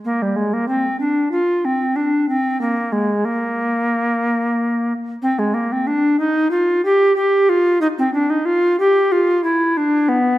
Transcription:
\new Staff \with { instrumentName = "Recorder" } { \time 4/4 \key bes \mixolydian \tempo 4 = 93 bes16 g16 aes16 bes16 c'8 d'8 f'8 c'8 d'8 c'8 | bes8 aes8 bes2~ bes8 r8 | \key f \dorian c'16 aes16 bes16 c'16 d'8 ees'8 f'8 g'8 g'8 f'8 | ees'16 c'16 d'16 ees'16 f'8 g'8 f'8 e'8 d'8 b8 | }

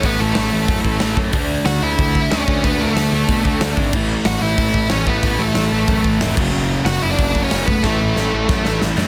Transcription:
<<
  \new Staff \with { instrumentName = "Lead electric guitar" } { \time 4/4 \key a \major \tempo 4 = 184 <b b'>8 <a a'>2. r8 | r4 <fis' fis''>8 <e' e''>4. <cis' cis''>4 | <b b'>8 <a a'>2. r8 | r4 <fis' fis''>8 <e' e''>4. <cis' cis''>8 <b b'>8~ |
<b b'>8 <a a'>2. r8 | r4 <fis' fis''>8 <e' e''>16 <d' d''>4 <cis' cis''>8. <b b'>8 | <a a'>2. r4 | }
  \new Staff \with { instrumentName = "Distorted electric guitar" } { \clef bass \time 4/4 \key a \major <a, e a>2 <a, e a>2 | <d a d'>2 <d a d'>2 | <d a d'>2 <d a d'>2 | <a, e a>2 <a, e a>2 |
<a, e a>2 <a, e a>4. <fis, cis fis>8~ | <fis, cis fis>4. <fis, cis fis>2 r8 | <a, e a>2 <a, e a>2 | }
  \new Staff \with { instrumentName = "Overdriven electric guitar" } { \clef bass \time 4/4 \key a \major <a, e a>4. <a, e a>4. <a, e a>4 | <d a d'>4. <d a d'>4. <d a d'>4 | <d a d'>4. <d a d'>4. <d a d'>4 | <a, e a>4. <a, e a>4. <a, e a>4 |
<a, e a>4. <a, e a>4. <a, e a>8 <fis, cis fis>8~ | <fis, cis fis>4 <fis, cis fis>4. <fis, cis fis>4 r8 | <a, e a>4. <a, e a>4. <a, e a>4 | }
  \new Staff \with { instrumentName = "Overdriven electric guitar" } { \clef bass \time 4/4 \key a \major <a, e a>2.~ <a, e a>8 <a, e a>8 | <d a d'>2.~ <d a d'>8 <d a d'>8 | <d a d'>2.~ <d a d'>8 <d a d'>8 | <a, e a>2.~ <a, e a>8 <a, e a>8 |
<a, e a>2.~ <a, e a>8 <fis, cis fis>8~ | <fis, cis fis>2. <fis, cis fis>8 r8 | <a, e a>2.~ <a, e a>8 <a, e a>8 | }
  \new Staff \with { instrumentName = "Picked electric bass" } { \clef bass \time 4/4 \key a \major a,,8 a,,8 a,,8 a,,8 fis,8 a,,8 a,,8 fis,8 | d,4 d,8 d,8 d,4 d,8 d,8 | d,8 d,8 d,8 d,8 b,8 d,8 d,8 gis,,8 | a,,4 a,,8 a,,8 a,,4 a,,8 a,,8 |
a,,8 a,,8 a,,8 a,,8 fis,8 a,,8 f,,8 fis,,8 | fis,,4 fis,,8 fis,,8 fis,,4 fis,,8 fis,,8 | a,,8 a,,8 a,,8 a,,8 fis,8 a,,8 a,,8 fis,8 | }
  \new DrumStaff \with { instrumentName = "Drums" } \drummode { \time 4/4 <hho bd>4 <hho sn>4 <hho bd>8 bd8 <hho sn>8 bd8 | <hho bd>4 <hho sn>4 <hho bd>8 bd8 <hho sn>8 bd8 | <hho bd>4 <hho sn>4 <hho bd>8 bd8 <hho sn>8 bd8 | <cymc bd>4 <hho sn>4 <hho bd>8 bd8 <hho sn>8 bd8 |
<hho bd>4 <hho sn>4 <hho bd>8 bd8 <hho sn>8 <cymc bd>8 | r4 <hho sn>4 <hho bd>8 bd8 <hho sn>8 bd8 | <bd sn>4 sn4 <bd sn>8 sn8 sn8 sn8 | }
>>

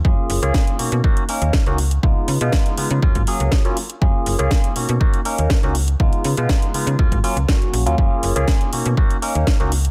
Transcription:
<<
  \new Staff \with { instrumentName = "Tine electric piano" } { \time 4/4 \key b \lydian \tempo 4 = 121 <ais cis' eis' gis'>8. <ais cis' eis' gis'>8. <ais cis' dis' fis'>8 <ais cis' dis' fis'>8 <ais cis' dis' ais'>8. <ais cis' dis' fis'>16 r8 | <gis b dis' eis'>8. <gis b dis' eis'>8. <gis b dis' eis'>8 <fis ais cis' eis'>8 <fis ais cis' gis'>8. <fis ais cis' eis'>16 r8 | <ais cis' eis' gis'>8. <ais cis' eis' gis'>8. <ais cis' dis' fis'>8 <ais cis' dis' fis'>8 <ais cis' dis' ais'>8. <ais cis' dis' fis'>16 r8 | <gis b dis' eis'>8. <gis b dis' eis'>8. <gis b dis' eis'>8 <fis ais cis' eis'>8 <fis ais cis' eis'>16 r16 <fis ais cis' fis'>8. <fis ais cis' eis'>16 |
ais8. <ais cis' eis' gis'>8. <ais cis' dis' fis'>8 <ais cis' dis' fis'>8 <ais cis' dis' ais'>8. <ais cis' dis' fis'>16 r8 | }
  \new Staff \with { instrumentName = "FM bass" } { \clef bass \time 4/4 \key b \lydian fis,16 r16 fis,,16 cis,16 r8 b,16 b,16 r8. dis,16 r16 cis,8. | cis,16 r16 cis16 b,16 r8 cis16 cis16 dis,16 gis,16 r16 cis,16 r4 | fis,16 r16 fis,,16 cis,16 r8 b,16 b,16 r8. dis,16 r16 cis,8. | cis,16 r16 cis16 b,16 r8 cis16 cis16 dis,16 gis,16 r16 cis,16 r8 ais,,16 dis,16 |
fis,16 r16 fis,,16 cis,16 r8 b,16 b,16 r8. dis,16 r16 cis,8. | }
  \new DrumStaff \with { instrumentName = "Drums" } \drummode { \time 4/4 bd8 hho16 hh16 <bd sn>16 hh16 hho16 hh16 bd16 hh16 hho16 hh16 <bd sn>16 hh16 hho16 hh16 | bd8 hho16 hh16 <bd sn>16 hh16 hho16 hh16 bd16 <hh bd>16 hho16 hh16 <bd sn>16 hh16 hho16 hh16 | bd8 hho16 hh16 <bd sn>16 hh16 hho16 hh16 bd16 hh16 hho16 hh16 <bd sn>16 hh16 hho16 hh16 | bd16 hh16 hho16 hh16 <bd sn>16 hh16 hho16 hh16 bd16 <hh bd>16 hho16 hh16 <bd sn>16 hh16 hho16 hh16 |
bd8 hho16 hh16 <bd sn>16 hh16 hho16 hh16 bd16 hh16 hho16 hh16 <bd sn>16 hh16 hho16 hh16 | }
>>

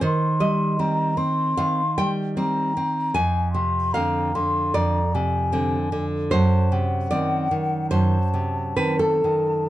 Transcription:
<<
  \new Staff \with { instrumentName = "Flute" } { \time 4/4 \key c \minor \tempo 4 = 76 c'''4 bes''8 c'''4. bes''4 | aes''8 c'''8 bes''8 c'''8 bes''8 aes''4 r8 | a''8 fis''4. a''4 a''4 | }
  \new Staff \with { instrumentName = "Nylon-string guitar" } { \clef bass \time 4/4 \key c \minor << { c''8 ees''4. f''8 g''4. | aes''4 f''4 d''4. r8 | c''4 d''4 c''4 b'16 a'8. | } \\ { ees8 g8 <g c'>8 c'8 ees8 g8 <g c'>8 c'8 | f,8 c8 <d c'>8 d8 f,8 c8 <d c'>8 d8 | fis,8 c8 <dis c'>8 dis8 fis,8 c8 <dis c'>8 dis8 | } >> }
>>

